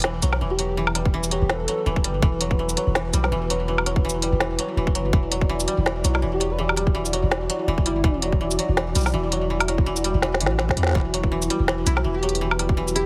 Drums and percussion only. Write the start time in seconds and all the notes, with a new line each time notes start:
0.00 closed hi-hat
0.02 snare, closed hi-hat
0.22 closed hi-hat, shaker
0.33 snare, low woodblock
0.59 closed hi-hat
0.87 low woodblock
0.95 closed hi-hat, low woodblock
1.05 kick
1.24 shaker
1.31 closed hi-hat
1.50 snare
1.68 closed hi-hat
1.96 kick
2.04 closed hi-hat
2.22 kick
2.41 closed hi-hat
2.51 kick
2.69 shaker
2.77 closed hi-hat
2.95 snare
3.14 closed hi-hat, shaker
3.24 snare, low woodblock
3.50 closed hi-hat
3.78 low woodblock
3.86 closed hi-hat, low woodblock
3.96 kick
4.10 shaker
4.22 closed hi-hat
4.40 snare
4.59 closed hi-hat
4.87 kick
4.95 closed hi-hat
5.13 kick
5.32 closed hi-hat
5.41 kick
5.60 shaker
5.68 closed hi-hat
5.86 snare
6.05 closed hi-hat, shaker
6.15 snare, low woodblock
6.41 closed hi-hat
6.69 low woodblock
6.77 closed hi-hat, low woodblock
6.87 kick
7.05 shaker
7.13 closed hi-hat
7.32 snare
7.50 closed hi-hat
7.78 kick
7.86 closed hi-hat
8.04 kick
8.22 closed hi-hat
8.32 kick
8.51 shaker
8.59 closed hi-hat
8.77 snare
8.95 closed hi-hat, shaker
8.98 shaker
9.01 shaker
9.03 snare, low woodblock, shaker
9.06 shaker
9.08 shaker
9.10 shaker
9.32 closed hi-hat
9.60 closed hi-hat, low woodblock
9.68 closed hi-hat, low woodblock
9.78 kick
9.96 shaker
10.04 closed hi-hat
10.22 snare
10.34 snare
10.41 closed hi-hat
10.46 snare
10.59 snare
10.69 kick, snare
10.77 closed hi-hat
10.83 snare
10.87 snare
10.89 snare
10.91 snare
10.93 snare
10.95 kick, snare
10.97 snare
11.00 snare
11.14 closed hi-hat
11.24 kick
11.42 shaker
11.50 closed hi-hat
11.68 snare
11.87 closed hi-hat, shaker
11.97 snare, low woodblock
12.23 closed hi-hat
12.29 closed hi-hat
12.35 closed hi-hat
12.51 low woodblock
12.59 closed hi-hat, low woodblock
12.69 kick
12.88 shaker
12.96 closed hi-hat